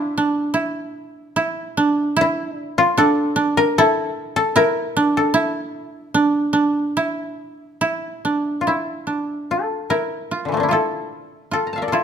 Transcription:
0.00 0.17 D4 medium
0.00 1.17 D4 medium
0.00 0.53 E4 medium
0.00 2.05 E4 medium
0.17 1.77 D4 medium
0.54 1.36 E4 medium
1.36 2.16 E4 medium
1.77 2.97 D4 medium
2.17 3.78 E4 medium
2.21 2.55 E4 medium
2.55 2.84 D4 medium
2.78 4.97 F4 medium
2.97 3.36 D4 medium
2.97 3.63 A4 medium
3.36 4.96 D4 medium
3.57 3.84 A#4 loud
3.78 4.55 E4 medium
3.78 4.36 A4 medium
4.36 4.62 A4 medium
4.56 5.33 E4 medium
4.56 5.23 A#4 loud
4.97 6.14 D4 medium
5.17 8.23 A4 medium
5.34 6.96 E4 medium
6.14 6.53 D4 medium
6.53 8.24 D4 medium
6.97 7.81 E4 medium
7.81 8.67 E4 medium
8.25 9.06 D4 medium
8.61 8.74 F4 soft
8.67 9.90 E4 soft
8.67 10.58 E4 soft
9.07 11.49 D4 soft
9.51 9.96 A4 medium
9.90 10.37 E4 soft
9.90 10.78 A#4 medium
10.31 10.77 F4 soft
10.45 10.69 D3 soft
10.45 10.63 E3 soft
10.52 10.69 F3 soft
10.52 11.73 A3 soft
10.57 10.78 A#3 soft
10.57 12.04 D4 soft
10.63 11.82 E4 soft
10.69 11.57 E4 soft
10.69 11.84 F4 soft
10.69 11.53 A4 medium
11.51 11.99 F4 soft
11.51 11.88 A4 medium
11.67 11.94 A#5 soft
11.73 12.04 F5 soft
11.73 11.88 A5 soft
11.78 11.98 E5 soft
11.82 12.04 A#4 soft
11.82 12.04 D5 soft
11.88 12.04 A4 soft
11.92 12.04 E4 soft
11.92 12.04 F4 soft

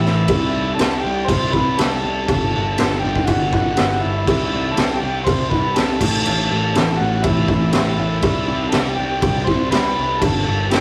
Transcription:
0.00 0.28 A2 medium
0.00 0.29 E3 medium
0.00 0.30 A3 medium
0.00 0.73 E4 loud
0.05 0.28 A1 loud
0.05 snare soft
0.28 0.73 C2 loud
0.28 0.75 C3 loud
0.28 kick loud
0.28 crash medium
0.33 0.58 G3 loud
0.33 0.53 C4 loud
0.54 0.81 C4 medium
0.59 0.79 G3 medium
0.74 1.28 C3 loud
0.74 1.03 A4 loud
0.79 1.02 C2 loud
0.79 1.06 G3 loud
0.79 1.01 C4 loud
0.79 snare loud
0.79 crash medium
1.00 1.26 C2 loud
1.00 1.52 C4 medium
1.00 1.28 G4 loud
1.07 1.56 G3 medium
1.24 1.51 C2 medium
1.24 1.53 C5 loud
1.29 kick loud
1.29 crash medium
1.52 1.76 C2 loud
1.52 1.81 C4 medium
1.52 1.79 B4 loud
1.52 kick medium
1.57 1.80 G3 medium
1.77 2.01 C2 loud
1.77 2.26 C3 medium
1.77 2.29 G3 medium
1.77 2.25 A4 loud
1.77 snare loud
1.77 crash medium
1.82 2.29 C4 medium
2.04 2.26 C2 loud
2.26 2.51 G1 loud
2.26 2.77 G2 medium
2.26 2.57 D3 loud
2.26 2.98 A4 loud
2.26 kick loud
2.26 crash medium
2.32 2.53 G3 loud
2.53 2.77 G1 medium
2.53 2.83 G3 medium
2.58 2.79 D3 medium
2.78 3.01 G1 loud
2.78 3.28 G2 medium
2.78 3.06 D3 loud
2.78 snare loud
2.78 crash medium
2.83 3.01 G3 loud
2.99 3.51 G3 medium
2.99 3.25 G4 medium
3.04 3.26 G1 medium
3.04 3.56 D3 medium
3.16 kick medium
3.24 3.50 G1 loud
3.24 3.73 F#4 medium
3.24 kick loud
3.24 crash medium
3.53 3.75 G1 medium
3.53 3.82 G3 medium
3.53 kick medium
3.57 3.79 D3 medium
3.74 4.25 G2 medium
3.74 4.02 F#4 medium
3.74 snare loud
3.74 crash medium
3.79 4.00 G1 medium
3.79 4.27 D3 medium
3.83 4.27 G3 medium
4.00 4.78 E4 loud
4.04 4.26 G1 medium
4.25 4.72 C2 loud
4.25 4.72 C3 medium
4.25 4.53 G3 loud
4.25 kick loud
4.25 crash medium
4.30 4.49 C4 loud
4.50 4.77 C4 medium
4.55 4.74 G3 medium
4.71 5.25 C3 loud
4.71 5.00 A4 loud
4.76 5.00 C2 medium
4.76 5.03 G3 loud
4.76 4.98 C4 loud
4.76 snare loud
4.76 crash medium
4.96 5.47 C4 medium
4.96 5.22 G4 medium
5.03 5.25 C2 medium
5.03 5.53 G3 medium
5.24 5.49 C2 loud
5.24 5.49 C5 loud
5.24 kick loud
5.24 crash medium
5.49 5.74 C2 loud
5.49 5.80 C4 medium
5.49 5.76 B4 medium
5.49 kick medium
5.54 5.78 G3 medium
5.74 6.00 C3 medium
5.74 6.21 A4 loud
5.74 snare loud
5.74 crash medium
5.79 6.01 C2 medium
5.79 6.01 G3 medium
5.79 6.01 C4 medium
6.01 6.23 A1 medium
6.01 6.27 E3 medium
6.01 6.29 A3 medium
6.01 kick loud
6.01 crash loud
6.06 6.23 A2 medium
6.22 6.72 A2 medium
6.22 7.01 A4 loud
6.22 crash medium
6.27 6.48 A1 loud
6.27 6.54 E3 loud
6.27 6.49 A3 loud
6.50 6.73 A1 medium
6.50 6.76 A3 medium
6.54 6.76 E3 medium
6.73 6.97 A1 medium
6.73 7.24 A2 loud
6.73 7.03 E3 loud
6.73 snare loud
6.73 crash medium
6.78 6.98 A3 loud
6.96 7.22 A1 loud
6.96 7.47 A3 medium
6.96 7.24 F#4 loud
7.03 7.52 E3 medium
7.22 7.47 A1 loud
7.22 7.72 E4 medium
7.22 kick loud
7.22 crash medium
7.48 7.71 A1 medium
7.48 7.77 A3 medium
7.48 kick medium
7.53 7.75 E3 medium
7.72 7.96 A1 loud
7.72 8.21 A2 medium
7.72 7.93 E4 medium
7.72 snare loud
7.72 crash medium
7.76 8.24 E3 medium
7.76 8.25 A3 medium
7.95 8.21 A1 loud
7.95 8.68 E4 loud
8.22 8.68 C2 loud
8.22 8.72 C3 loud
8.22 8.51 G3 loud
8.22 kick loud
8.22 crash medium
8.28 8.47 C4 loud
8.48 8.76 C4 medium
8.52 8.74 G3 medium
8.69 8.95 C2 loud
8.69 8.81 A4 medium
8.69 snare loud
8.69 crash medium
8.73 9.23 C3 loud
8.73 9.02 G3 loud
8.73 8.98 C4 loud
8.96 9.20 C2 medium
8.96 9.45 C4 medium
8.96 9.48 G4 loud
9.03 9.50 G3 medium
9.22 9.45 C2 loud
9.22 kick loud
9.22 crash medium
9.44 9.70 C2 medium
9.44 9.76 C4 medium
9.44 9.69 C5 medium
9.44 kick medium
9.51 9.73 G3 medium
9.70 9.93 C2 loud
9.70 10.19 C3 medium
9.70 10.21 G3 medium
9.70 10.23 B4 medium
9.70 snare loud
9.70 crash medium
9.77 10.23 C4 medium
9.99 10.20 C2 medium
10.19 10.44 G1 loud
10.19 10.70 G2 loud
10.19 10.50 D3 loud
10.19 10.67 A4 medium
10.19 kick loud
10.19 crash medium
10.25 10.45 G3 loud
10.46 10.69 G1 medium
10.46 10.75 G3 medium
10.52 10.73 D3 medium
10.70 10.81 G1 medium
10.70 10.81 G2 loud
10.70 10.81 G4 medium
10.70 snare loud
10.70 crash medium
10.74 10.81 D3 loud
10.74 10.81 G3 loud

